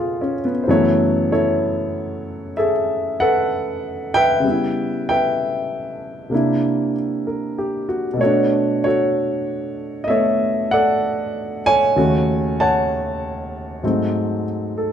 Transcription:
0.00 0.67 C#2 soft
0.00 0.67 B2 soft
0.00 0.66 C#3 soft
0.00 0.69 F3 soft
0.00 0.67 A3 soft
0.00 0.43 B3 soft
0.00 0.38 F4 medium
0.00 0.19 G#4 soft
0.00 0.69 A4 soft
0.00 0.69 B4 medium
0.00 0.34 F5 medium
0.21 0.50 C#4 medium
0.45 0.68 B3 medium
0.64 4.38 C#3 medium
0.64 4.44 E3 medium
0.64 0.68 C5 medium
0.68 4.44 F#2 medium
0.68 4.44 F#3 medium
0.68 4.44 A3 medium
0.68 4.45 B3 medium
0.68 1.31 E4 soft
0.68 1.31 A4 medium
0.68 0.85 C#5 medium
1.32 3.16 E4 medium
1.32 2.57 A4 medium
1.32 2.52 C#5 medium
2.57 4.41 G#4 medium
2.57 3.20 A4 medium
2.57 2.71 E5 medium
3.20 4.41 A4 medium
3.20 4.14 B4 medium
3.20 4.17 F#5 medium
4.14 5.09 B4 medium
4.14 5.09 E5 medium
4.14 5.04 G5 loud
4.40 6.30 C#3 soft
4.40 6.32 G3 soft
4.47 6.33 B3 soft
4.47 6.33 E4 medium
5.09 6.29 B4 medium
5.09 6.93 E5 medium
5.09 6.92 G5 medium
6.30 8.19 C3 soft
6.30 8.19 A#3 soft
6.30 8.20 D4 medium
6.34 8.21 E4 medium
7.27 7.86 A#4 soft
7.58 8.07 G4 medium
7.89 8.22 F#4 soft
8.14 11.92 B2 medium
8.14 10.06 A3 soft
8.21 8.85 F#4 medium
8.21 8.85 A4 medium
8.21 8.80 C#5 medium
8.25 11.98 D4 medium
8.84 10.69 F#4 medium
8.84 10.08 A4 medium
8.84 9.99 C#5 medium
10.04 11.95 A3 soft
10.04 10.08 D#5 medium
10.04 10.73 E5 medium
10.09 11.96 B3 soft
10.09 10.72 A4 medium
10.09 11.66 C#5 medium
10.71 11.92 A4 medium
10.71 11.92 D5 medium
10.71 11.61 F#5 medium
11.66 12.60 C#5 medium
11.66 12.55 G#5 loud
11.96 13.83 D#2 medium
11.96 13.83 C#3 medium
11.96 13.83 A3 medium
11.96 13.84 F#4 medium
12.60 13.80 C#5 medium
12.60 14.43 F#5 medium
12.60 14.43 A5 medium
13.83 14.92 G#2 soft
13.83 14.92 F#3 soft
13.83 14.92 A3 soft
13.83 14.92 C4 medium
14.78 14.92 A4 soft

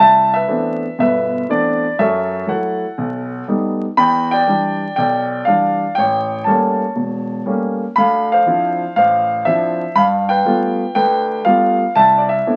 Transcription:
0.00 0.41 C2 medium
0.00 0.32 E5 medium
0.00 0.34 A5 loud
0.34 1.01 B4 medium
0.34 0.99 E5 medium
0.48 0.84 E3 soft
0.48 0.84 A3 soft
0.48 0.84 B3 soft
0.48 0.84 C4 soft
0.48 0.84 D4 medium
0.98 1.42 G1 medium
0.98 1.42 B2 medium
0.98 1.96 B4 medium
0.98 1.45 E5 medium
1.49 1.84 E3 soft
1.49 1.84 A3 soft
1.49 1.85 B3 soft
1.49 1.84 C4 soft
1.49 1.85 D4 medium
1.49 2.00 D5 medium
1.99 2.42 F#2 medium
1.99 2.42 F#3 medium
1.99 2.49 A4 medium
1.99 2.50 E5 medium
2.47 2.83 F#3 soft
2.47 2.84 A3 soft
2.47 2.84 E4 medium
2.47 3.45 A4 soft
2.47 3.44 F#5 medium
2.98 3.41 B1 medium
3.48 3.84 G3 soft
3.48 3.84 A3 soft
3.48 3.84 B3 soft
3.48 3.84 D#4 medium
3.97 4.41 E2 medium
3.97 4.30 G5 medium
3.97 4.33 B5 loud
4.31 4.98 D5 medium
4.31 4.95 G5 loud
4.47 4.83 E3 soft
4.47 4.83 G3 soft
4.47 4.83 D4 medium
4.96 5.41 B1 medium
4.96 5.94 D5 medium
4.96 5.48 G5 medium
5.45 5.83 E3 soft
5.45 5.83 G3 soft
5.45 5.83 D4 medium
5.45 5.97 F5 medium
5.95 6.41 A1 medium
5.95 6.47 C#5 medium
5.95 6.42 G5 medium
6.44 6.82 G3 soft
6.44 6.83 A3 soft
6.44 6.83 A#3 soft
6.44 6.83 C#4 medium
6.44 7.41 A5 medium
6.48 7.43 C#5 soft
6.96 7.40 E1 medium
7.46 7.82 G3 soft
7.46 7.82 A3 soft
7.46 7.82 A#3 soft
7.46 7.82 C#4 soft
7.96 8.40 D2 medium
7.96 8.31 F5 medium
7.96 8.28 B5 medium
8.32 8.97 C5 medium
8.32 8.92 F5 medium
8.46 8.82 F3 soft
8.46 8.82 C4 soft
8.46 8.82 D4 soft
8.46 8.82 E4 medium
8.96 9.39 A1 medium
8.96 9.92 C5 medium
8.96 9.42 F5 medium
9.45 9.82 F3 soft
9.45 9.82 C4 soft
9.45 9.82 D4 soft
9.45 9.82 E4 medium
9.45 9.97 E5 medium
9.95 10.39 G2 medium
9.95 10.92 F5 medium
9.95 10.03 B5 loud
10.29 10.94 B4 medium
10.29 10.94 G5 medium
10.45 10.81 G3 soft
10.45 10.81 A3 soft
10.45 10.81 B3 soft
10.45 10.82 F4 medium
10.95 11.39 D2 medium
10.95 11.91 B4 medium
10.95 11.41 G5 medium
11.45 11.81 G3 medium
11.45 11.81 A3 soft
11.45 11.81 B3 soft
11.45 11.81 F4 medium
11.45 11.96 F5 medium
11.96 12.39 C2 medium
11.96 12.28 E5 medium
11.96 12.21 A5 medium
12.18 12.28 D5 medium
12.29 12.56 E5 medium
12.47 12.56 A3 soft
12.47 12.56 B3 soft
12.47 12.56 C4 soft
12.47 12.56 D4 soft
12.47 12.56 E4 medium

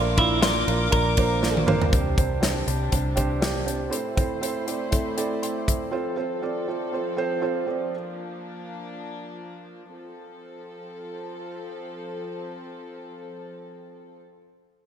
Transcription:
0.00 0.64 A#1 loud
0.00 0.64 A#2 medium
0.00 0.15 A#3 medium
0.00 0.15 D4 medium
0.00 0.16 F4 medium
0.00 0.16 A#4 medium
0.00 1.90 A#4 medium
0.00 0.16 D5 loud
0.00 1.89 F5 medium
0.00 1.90 D6 medium
0.17 0.40 A#3 medium
0.17 0.40 D4 medium
0.17 0.42 E4 medium
0.17 0.41 F4 medium
0.17 0.41 A#4 medium
0.17 0.41 D5 medium
0.17 kick loud
0.17 ride medium
0.42 0.65 A#3 medium
0.42 0.65 D4 medium
0.42 0.92 F4 medium
0.42 0.66 F4 medium
0.42 0.66 A#4 medium
0.42 0.66 D5 medium
0.42 snare loud
0.42 ride medium
0.67 0.91 A#1 loud
0.67 0.90 A#3 medium
0.67 0.90 D4 medium
0.67 0.91 F4 medium
0.67 0.91 A#4 medium
0.67 0.91 D5 medium
0.67 ride medium
0.92 1.89 A#1 loud
0.92 1.15 A#3 medium
0.92 1.15 D4 medium
0.92 1.16 F4 medium
0.92 1.63 A#4 loud
0.92 1.16 A#4 medium
0.92 1.16 D5 medium
0.92 kick medium
0.92 ride medium
1.17 1.40 A#3 medium
1.17 1.40 D4 medium
1.17 1.41 F4 medium
1.17 1.41 A#4 medium
1.17 1.41 C5 medium
1.17 kick medium
1.17 ride medium
1.41 1.65 A#3 medium
1.41 1.65 D4 medium
1.41 1.65 F4 medium
1.41 1.65 A#4 medium
1.41 1.66 D5 medium
1.41 snare medium
1.57 high tom medium
1.66 1.90 A#3 loud
1.66 1.90 D4 loud
1.66 1.91 F4 medium
1.66 1.91 A#4 loud
1.66 1.91 C5 loud
1.66 mid tom loud
1.82 floor tom loud
1.91 2.64 C2 medium
1.91 3.90 C3 medium
1.91 2.64 C3 medium
1.91 3.90 G3 medium
1.91 2.15 C4 medium
1.91 3.90 D4 medium
1.91 2.16 D4 medium
1.91 2.16 G4 medium
1.91 2.16 C5 medium
1.91 kick loud
1.91 closed hi-hat medium
2.17 2.39 C4 medium
2.17 2.40 D4 medium
2.17 2.40 G4 medium
2.17 2.41 C5 medium
2.17 kick medium
2.17 closed hi-hat medium
2.41 2.65 C4 medium
2.41 2.65 D4 medium
2.41 2.65 G4 medium
2.41 2.65 C5 medium
2.41 snare medium
2.41 closed hi-hat medium
2.67 2.91 C2 medium
2.67 2.90 C4 medium
2.67 2.90 D4 medium
2.67 2.91 G4 medium
2.67 2.91 C5 medium
2.67 closed hi-hat medium
2.92 3.89 C2 medium
2.92 3.14 C4 medium
2.92 3.14 D4 medium
2.92 3.15 G4 medium
2.92 3.15 C5 medium
2.92 kick medium
2.92 closed hi-hat medium
3.16 3.39 C4 medium
3.16 3.40 D4 medium
3.16 3.40 G4 medium
3.16 3.40 C5 loud
3.16 kick medium
3.16 closed hi-hat medium
3.41 3.64 C4 medium
3.41 3.65 D4 medium
3.41 3.65 G4 medium
3.41 3.65 D5 medium
3.41 snare medium
3.41 closed hi-hat medium
3.66 3.88 C4 medium
3.66 3.90 D4 medium
3.66 3.90 G4 medium
3.66 3.90 C5 medium
3.66 closed hi-hat medium
3.90 4.63 A2 medium
3.90 5.91 A3 medium
3.90 4.14 C4 medium
3.90 4.14 E4 medium
3.90 4.15 A4 medium
3.90 4.15 C5 medium
3.90 closed hi-hat medium
3.94 5.91 E4 medium
3.94 5.91 C5 medium
4.16 4.40 C4 medium
4.16 4.40 E4 medium
4.16 4.40 A4 medium
4.16 4.41 C5 medium
4.16 kick medium
4.16 closed hi-hat medium
4.41 4.65 C4 medium
4.41 4.65 E4 medium
4.41 4.65 A4 medium
4.41 4.66 C5 medium
4.41 closed hi-hat medium
4.67 4.90 C4 medium
4.67 4.90 E4 medium
4.67 4.91 A4 medium
4.67 4.91 D5 medium
4.67 closed hi-hat medium
4.91 5.15 C4 medium
4.91 5.15 E4 medium
4.91 5.16 A4 medium
4.91 5.16 C5 medium
4.91 kick medium
4.91 closed hi-hat medium
5.17 5.40 C4 medium
5.17 5.41 E4 medium
5.17 5.41 A4 medium
5.17 5.41 D5 loud
5.17 closed hi-hat medium
5.42 5.67 G5 soft
5.42 5.66 C6 medium
5.42 closed hi-hat medium
5.67 5.90 A4 soft
5.67 6.15 E5 medium
5.67 kick medium
5.67 closed hi-hat medium
5.92 9.90 F3 medium
5.92 6.15 C4 medium
5.92 7.92 C4 medium
5.92 6.15 F4 medium
5.92 6.15 A4 medium
5.92 7.91 A4 medium
5.92 6.16 C5 medium
6.16 6.40 C4 medium
6.16 6.40 F4 medium
6.16 6.40 A4 medium
6.16 6.41 C5 medium
6.42 6.66 C4 medium
6.42 6.66 F4 medium
6.42 6.66 A4 medium
6.42 6.66 D5 medium
6.68 6.91 C4 medium
6.68 6.91 F4 medium
6.68 6.91 A4 medium
6.68 6.92 D5 medium
6.92 7.16 C4 medium
6.92 7.16 F4 medium
6.92 7.16 A4 medium
6.92 7.17 C5 medium
7.17 7.40 C4 medium
7.17 7.40 F4 medium
7.17 7.40 A4 medium
7.17 7.41 C5 loud
7.42 7.65 C4 medium
7.42 7.65 F4 medium
7.42 7.66 A4 medium
7.42 7.66 C5 medium
7.67 7.90 C4 medium
7.67 7.91 F4 medium
7.67 7.91 A4 medium
7.67 7.91 D5 medium
7.92 9.92 A#3 soft
7.92 9.91 D4 medium
9.93 14.22 F3 medium
9.93 14.21 C4 soft
9.93 14.21 A4 medium

